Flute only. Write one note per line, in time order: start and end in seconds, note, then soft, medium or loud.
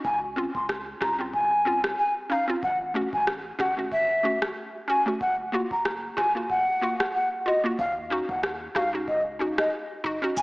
0.05 0.19 G#5 loud
0.55 0.67 C6 medium
1.02 1.16 A#5 medium
1.34 1.81 G#5 medium
1.98 2.13 G#5 medium
2.31 2.45 F5 medium
2.63 2.77 F#5 loud
3.13 3.25 G#5 medium
3.60 3.74 F#5 medium
3.92 4.39 E5 medium
4.89 5.03 G#5 medium
5.21 5.36 F#5 loud
5.71 5.83 A#5 medium
6.18 6.32 G#5 medium
6.50 6.97 F#5 loud
7.14 7.29 F#5 medium
7.47 7.61 D#5 medium
7.79 7.94 F5 loud
8.29 8.41 F#5 medium
8.76 8.90 F5 medium
9.08 9.23 D#5 medium
9.58 9.70 D#5 medium
10.37 10.42 G#5 loud